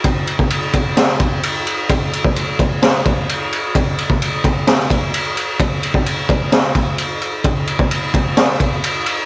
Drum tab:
RD |x-x-x-x-x-x-x-x-|x-x-x-x-x-x-x-x-|x-x-x-x-x-x-x-x-|x-x-x-x-x-x-x-x-|
SD |--------oo------|--------o-------|--------oo------|--------o-------|
BD |o--o--o---o-----|o--o--o---o-----|o--o--o---o-----|o--o--o---o-----|

RD |x-x-x-x-x-x-x-x-|
SD |--------o-------|
BD |o--o--o---o-----|